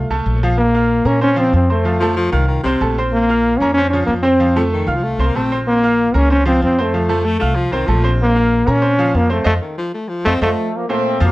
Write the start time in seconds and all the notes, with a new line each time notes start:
Already playing: A3
0.10 C2 A3 A4 A5
0.26 A#1
0.43 F3 F4 F5
0.58 A#3
0.75 F4 F5 F6
1.05 A#2 A#3 C#4 A#4 A#5
1.21 C4 C#4 C5 C6
1.36 F3 C4 F4 F5
1.53 F2 C4
1.70 A3 C4 C5 C6
1.85 F3 F4 F5
2.00 F3 A3 A4 A5
2.16 F3
2.32 C2 D#3 F4 F5 F6
2.48 D#3
2.64 C2 C3 C4 C5 C6
2.81 A#1 A3 A4 A5
2.98 C4 C5 C6
3.13 A#3
3.29 F4 F5 F6
3.58 F2 A#3 C#4 A#4 A#5
3.74 C4 C#4 C5
3.78 C6
3.90 F3 C#4 F4 F5
4.06 F2 A#3
4.23 C4 C5 C6
4.40 F3 F4 F5
4.56 F3 A3 A4 A5
4.72 D#3
4.87 C2 F4 F5 F6
4.96 F3
5.03 A3
5.18 C2 C4 C5 C6
5.26 A#3
5.35 A#1 A3 C4 A4 A5
5.52 C4 C5 C6
5.68 A#3
5.83 F4 F5 F6
6.14 C#2 A#3 C#4 A#4 A#5
6.30 C4 C#4 C5 C6
6.46 F3 C4 F4 F5
6.62 F2 C4
6.78 A3 C4 C5 C6
6.94 F3 F4 F5
7.08 F3 A3 A4 A5
7.25 A3
7.39 C2 A3 F4 F5 F6
7.55 F3
7.72 C2 D#3 C4 C5 C6
7.87 A#1 F3 A3 A4 A5
8.04 C4 C5 C6
8.23 A#3
8.36 F4 F5 F6
8.67 A#2 A#3 C#4 A#4 A#5
8.82 C4 C5 C6
8.99 F3 F4 F5
9.15 F2 A#3
9.30 A3 C4 C5 C6
9.45 F2 A3 C5 D#5 F5
9.62 D#3
9.78 F3
9.94 A3
10.08 F3
10.25 F2 A3 C4 C5 D#5 F5
10.41 F2 F3 A3 C5 D#5 F5
10.74 F3 A#3
10.89 A#2 A3 C4 F4 C5
11.20 F2 F3 F#3 A#3 F4 F5